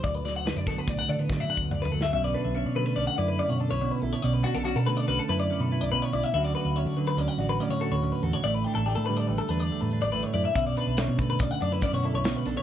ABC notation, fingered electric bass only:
X:1
M:5/4
L:1/16
Q:1/4=142
K:D
V:1 name="Fingered electric bass" clef=bass
D,,4- D,, F,, B,,, z B,,,2 D, D,2 z2 D,,2 z D,,2 | [K:Bm] B,,,2 z B,,,2 B,,3 B,,, z F,,2 z B,,2 B,,,2 z B,,, z | B,,,2 z B,,,2 B,,3 B,,, z F,,2 z B,,2 B,,,2 z B,,, z | D,,2 z D,,2 D,3 D,, z A,,,2 z D,2 D,,2 z E,, z |
A,,,2 z A,,,2 A,,3 A,,, z E,,2 z A,,2 A,,,2 z F,, z | B,,,2 z B,,,2 B,,3 B,,, z F,,2 z B,,2 B,,,2 z B,,, z |]